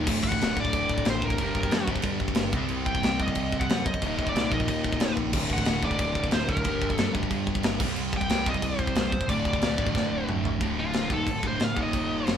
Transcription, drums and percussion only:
0.07 kick, crash
0.24 kick
0.32 kick
0.41 snare, crash
0.57 kick
0.65 kick
0.73 kick, crash
0.89 kick
0.98 kick
1.05 snare, crash
1.22 kick
1.30 kick
1.38 kick, crash
1.55 kick
1.63 kick
1.71 snare, crash
1.88 kick
1.96 kick
2.02 kick, crash
2.20 kick
2.28 kick
2.35 snare, crash
2.53 kick
2.68 crash
2.86 kick
2.95 kick
3.03 snare, crash
3.20 kick
3.28 kick
3.35 kick, crash
3.52 kick
3.61 kick
3.69 snare, crash
3.86 kick
3.94 kick
4.02 kick, crash
4.19 kick
4.27 kick
4.36 snare, crash
4.52 kick
4.60 kick
4.68 kick, crash
4.84 kick
4.93 kick
5.00 snare, crash
5.17 kick
5.33 kick, crash
5.50 kick
5.58 kick
5.65 snare, crash
5.83 kick
5.91 kick
5.99 kick, crash
6.15 kick
6.24 kick
6.31 snare, crash
6.49 kick
6.57 kick
6.64 kick, crash
6.82 kick
6.90 kick
6.98 snare, crash
7.15 kick
7.23 kick
7.31 kick, crash
7.47 kick
7.55 kick
7.63 snare, crash
7.80 kick, crash
7.96 crash
8.13 kick
8.21 kick
8.29 snare, crash
8.46 kick
8.54 kick
8.62 kick, crash
8.79 kick
8.87 kick
8.95 snare, crash
9.12 kick
9.21 kick
9.29 kick, crash
9.45 kick
9.53 kick
9.62 snare, crash
9.78 kick
9.87 kick
9.95 kick, snare
10.29 mid tom
10.45 floor tom
10.61 kick, crash
10.93 snare, crash
11.10 kick
11.27 kick, crash
11.43 kick
11.60 snare, crash
11.77 kick
11.93 kick, crash
12.27 snare, crash

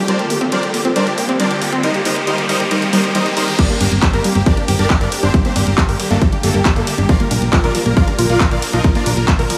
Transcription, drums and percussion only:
0.08 closed hi-hat
0.19 closed hi-hat
0.30 open hi-hat
0.41 closed hi-hat
0.52 closed hi-hat
0.63 closed hi-hat
0.74 open hi-hat
0.85 closed hi-hat
0.96 closed hi-hat
1.07 closed hi-hat
1.18 open hi-hat
1.29 closed hi-hat
1.40 closed hi-hat
1.51 closed hi-hat
1.62 open hi-hat
1.73 closed hi-hat
1.83 closed hi-hat
1.94 closed hi-hat
2.05 open hi-hat
2.16 closed hi-hat
2.27 closed hi-hat
2.38 closed hi-hat
2.49 open hi-hat
2.60 closed hi-hat
2.71 closed hi-hat
2.82 closed hi-hat
2.93 open hi-hat
3.04 closed hi-hat
3.15 closed hi-hat
3.26 closed hi-hat
3.37 open hi-hat
3.48 open hi-hat
3.59 kick, closed hi-hat, crash
3.70 closed hi-hat
3.81 open hi-hat, ride
3.92 closed hi-hat
4.02 kick, clap, closed hi-hat
4.13 closed hi-hat
4.24 open hi-hat, ride
4.35 closed hi-hat
4.46 kick, closed hi-hat
4.57 closed hi-hat
4.68 open hi-hat, ride
4.79 closed hi-hat
4.90 kick, clap, closed hi-hat
5.01 closed hi-hat
5.12 open hi-hat, ride
5.23 closed hi-hat
5.34 kick, closed hi-hat
5.45 closed hi-hat
5.56 open hi-hat, ride
5.67 closed hi-hat
5.78 kick, clap, closed hi-hat
5.89 open hi-hat
6.00 open hi-hat, ride
6.11 closed hi-hat
6.22 kick, closed hi-hat
6.32 closed hi-hat
6.43 open hi-hat, ride
6.54 closed hi-hat
6.65 kick, clap, closed hi-hat
6.76 closed hi-hat
6.87 open hi-hat, ride
6.98 closed hi-hat
7.09 kick, closed hi-hat
7.20 closed hi-hat
7.31 open hi-hat, ride
7.42 closed hi-hat
7.53 kick, clap, closed hi-hat
7.64 closed hi-hat
7.75 open hi-hat, ride
7.86 closed hi-hat
7.97 kick, closed hi-hat
8.08 closed hi-hat
8.19 open hi-hat, ride
8.30 closed hi-hat
8.40 kick, clap, closed hi-hat
8.51 closed hi-hat
8.62 open hi-hat, ride
8.73 closed hi-hat
8.84 kick, closed hi-hat
8.95 closed hi-hat
9.06 open hi-hat, ride
9.17 closed hi-hat
9.28 kick, clap, closed hi-hat
9.39 open hi-hat
9.50 open hi-hat, ride

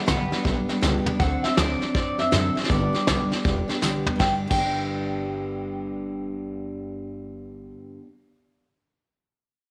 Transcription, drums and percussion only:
0.08 snare, hi-hat pedal
0.32 snare
0.45 kick, snare
0.69 snare
0.82 snare, hi-hat pedal
1.06 floor tom
1.20 kick, snare
1.44 snare
1.57 snare, hi-hat pedal
1.82 snare
1.95 kick, snare
2.19 snare
2.32 snare, hi-hat pedal
2.57 snare
2.64 snare
2.70 kick, snare
2.94 snare
3.07 snare, hi-hat pedal
3.32 snare
3.45 kick, snare
3.69 snare
3.82 snare, hi-hat pedal
4.07 floor tom
4.20 kick, snare
4.51 kick, crash

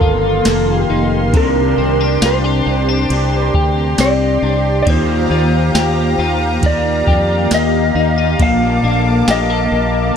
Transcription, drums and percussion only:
0.01 kick
0.45 snare, ride, tambourine
1.34 kick, ride
2.22 snare, ride, tambourine
3.10 ride
3.54 kick
3.98 snare, ride, tambourine
4.87 kick, ride
5.75 snare, ride, tambourine
6.63 kick, ride
7.07 kick
7.51 snare, ride, tambourine
8.40 kick, ride
9.28 snare, ride, tambourine

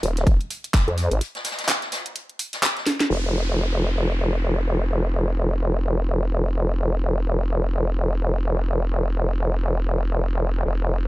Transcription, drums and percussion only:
0.03 closed hi-hat, open hi-hat
0.17 snare, closed hi-hat
0.26 kick, closed hi-hat
0.41 closed hi-hat
0.50 closed hi-hat, open hi-hat
0.64 closed hi-hat
0.73 kick, snare, clap, closed hi-hat
0.88 closed hi-hat
0.97 snare, closed hi-hat, open hi-hat
1.11 closed hi-hat
1.21 closed hi-hat
1.35 snare, closed hi-hat
1.44 snare, closed hi-hat, open hi-hat
1.52 snare, closed hi-hat
1.59 snare, closed hi-hat
1.63 snare, closed hi-hat
1.68 snare, clap, closed hi-hat
1.82 snare, closed hi-hat
1.92 snare, closed hi-hat, open hi-hat
2.06 closed hi-hat
2.16 closed hi-hat
2.29 closed hi-hat
2.39 open hi-hat
2.53 snare, closed hi-hat
2.63 snare, clap, closed hi-hat
2.77 snare, closed hi-hat
2.86 snare, closed hi-hat, open hi-hat
3.00 snare, closed hi-hat
3.72 snare
3.95 snare
4.05 closed hi-hat
4.76 snare
5.13 snare
5.46 closed hi-hat
5.61 snare
5.70 closed hi-hat
5.83 snare
5.94 closed hi-hat
6.17 closed hi-hat
6.41 closed hi-hat
6.55 snare
6.65 closed hi-hat
6.78 snare
6.88 closed hi-hat
7.12 closed hi-hat
7.35 closed hi-hat
7.50 snare
7.59 closed hi-hat
7.72 snare
7.82 closed hi-hat
8.06 closed hi-hat
8.20 closed hi-hat
8.30 closed hi-hat
8.53 snare, closed hi-hat
8.77 closed hi-hat
8.91 snare
9.00 closed hi-hat
9.24 closed hi-hat
9.39 snare
9.48 closed hi-hat
9.62 snare
9.72 closed hi-hat
9.95 closed hi-hat
10.19 closed hi-hat
10.33 snare
10.42 closed hi-hat
10.56 snare
10.66 closed hi-hat
10.80 closed hi-hat
10.89 closed hi-hat

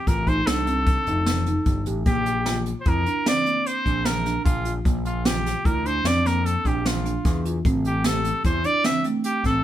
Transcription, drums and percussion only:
0.07 kick, snare, closed hi-hat
0.27 kick, closed hi-hat
0.47 snare, closed hi-hat
0.67 closed hi-hat
0.86 kick, closed hi-hat
1.07 closed hi-hat
1.26 snare, closed hi-hat
1.46 closed hi-hat
1.66 kick, closed hi-hat
1.86 closed hi-hat
2.06 kick, closed hi-hat
2.26 closed hi-hat
2.46 snare, closed hi-hat
2.66 closed hi-hat
2.86 kick, closed hi-hat
3.06 closed hi-hat
3.26 snare, closed hi-hat
3.46 closed hi-hat
3.66 closed hi-hat
3.86 kick, closed hi-hat
4.05 snare, closed hi-hat
4.26 snare, closed hi-hat
4.46 kick, closed hi-hat
4.65 closed hi-hat
4.85 kick, closed hi-hat
5.05 closed hi-hat
5.25 snare, closed hi-hat
5.46 snare, closed hi-hat
5.65 kick, closed hi-hat
5.86 closed hi-hat
6.05 snare, closed hi-hat
6.26 snare, closed hi-hat
6.46 closed hi-hat
6.65 kick, closed hi-hat
6.86 snare, closed hi-hat
7.06 closed hi-hat
7.25 kick, snare, closed hi-hat
7.45 closed hi-hat
7.65 kick, closed hi-hat
7.85 closed hi-hat
8.04 snare, closed hi-hat
8.25 closed hi-hat
8.44 kick, closed hi-hat
8.64 closed hi-hat
8.84 snare, closed hi-hat
9.04 closed hi-hat
9.24 closed hi-hat
9.44 kick, snare, closed hi-hat

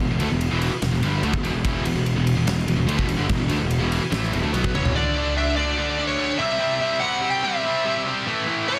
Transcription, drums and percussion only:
0.20 ride
0.41 ride
0.62 ride
0.82 snare, ride
0.94 snare
1.03 ride
1.23 ride
1.33 kick
1.45 ride
1.65 kick, ride
1.85 ride
2.06 ride
2.27 ride
2.47 snare, ride
2.58 snare
2.68 ride
2.89 ride
2.99 kick
3.09 ride
3.29 kick, ride
3.49 ride
3.71 ride
3.92 ride
4.12 snare, ride
4.23 snare
4.33 ride
4.54 ride
4.64 kick
4.75 high tom
4.85 floor tom

